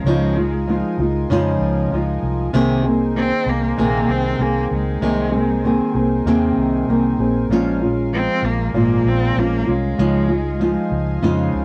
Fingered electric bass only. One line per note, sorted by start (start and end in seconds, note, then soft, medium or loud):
0.04 0.82 C#2 loud
0.98 1.24 C#2 loud
1.30 1.55 F2 loud
1.60 1.86 C#2 loud
1.92 2.17 C#2 medium
2.23 2.48 C2 loud
2.53 3.30 C2 loud
3.46 3.72 C2 loud
3.78 4.03 A#1 loud
4.08 4.34 C2 loud
4.39 4.65 C2 medium
4.71 4.97 C#2 medium
5.02 5.79 C2 loud
5.94 6.20 C2 loud
6.25 6.51 D#2 loud
6.56 6.82 C2 medium
6.88 7.14 C2 medium
7.18 7.44 A#1 medium
7.49 8.27 A#1 loud
8.42 8.68 A#1 loud
8.73 8.99 G#1 loud
9.04 9.30 A#1 medium
9.36 9.62 A#1 medium
9.68 9.93 C2 medium
9.99 10.75 C#2 loud
10.91 11.17 C#2 loud
11.22 11.48 F2 loud
11.54 11.65 C#2 loud